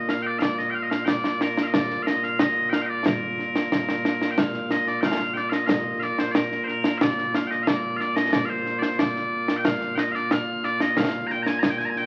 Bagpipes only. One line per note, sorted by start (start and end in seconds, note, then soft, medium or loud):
0.00 12.06 A#2 medium
0.00 12.06 A#3 medium
0.10 0.22 F5 loud
0.22 0.27 G5 medium
0.27 0.39 D5 medium
0.39 0.58 D5 medium
0.39 0.42 F5 medium
0.58 0.70 D#5 medium
0.70 0.75 G5 medium
0.75 0.83 F5 medium
0.83 0.90 D#5 medium
0.90 1.05 F5 medium
1.05 1.42 D5 medium
1.05 1.08 G5 medium
1.42 1.63 A#4 medium
1.63 1.67 F5 medium
1.67 1.74 D#5 medium
1.74 2.03 D5 loud
2.03 2.24 D#5 medium
2.03 2.07 F5 medium
2.24 2.39 F5 medium
2.39 2.69 D#5 medium
2.69 2.82 F5 loud
2.69 2.73 G5 loud
2.82 2.86 G5 medium
2.86 3.06 D5 medium
2.86 2.90 D#5 medium
3.06 4.31 A#4 medium
4.31 4.38 G5 medium
4.38 4.71 F5 medium
4.71 4.88 D#5 medium
4.88 5.01 D5 medium
5.01 5.34 F5 medium
5.01 5.05 G5 medium
5.34 5.50 D5 medium
5.34 5.37 G5 medium
5.50 5.66 D#5 medium
5.50 5.54 F5 medium
5.66 6.00 D#5 medium
5.66 5.70 F5 medium
6.00 6.19 D5 medium
6.00 6.03 F5 medium
6.19 6.31 C5 medium
6.31 6.64 A#4 medium
6.31 6.35 D5 medium
6.64 6.98 A#4 medium
6.64 6.68 C5 medium
6.98 7.35 D5 medium
6.98 7.02 F5 medium
7.35 7.47 F5 medium
7.47 7.63 D#5 medium
7.47 7.50 G5 medium
7.63 7.68 F5 medium
7.68 7.97 D5 medium
7.97 8.01 F5 loud
8.01 8.16 D5 loud
8.16 8.33 D#5 medium
8.32 8.45 D5 loud
8.45 8.49 F5 medium
8.49 8.79 C5 medium
8.79 8.99 C5 medium
8.79 8.83 D5 medium
8.99 9.57 D5 medium
9.57 9.65 G5 medium
9.65 9.95 F5 loud
9.95 10.12 D#5 medium
9.95 9.99 G5 medium
10.12 10.32 D5 medium
10.12 10.15 F5 medium
10.32 10.65 F5 loud
10.65 10.81 D5 loud
10.81 10.97 D#5 loud
10.97 11.27 F5 medium
11.27 11.31 A#5 medium
11.31 11.43 G5 medium
11.43 11.47 A#5 loud
11.47 11.59 G#5 loud
11.59 11.63 A#5 loud
11.63 11.70 G#5 loud
11.70 11.78 G5 medium
11.78 11.85 G#5 loud
11.85 11.90 A#5 medium
11.90 11.97 G#5 medium
11.97 12.06 G5 loud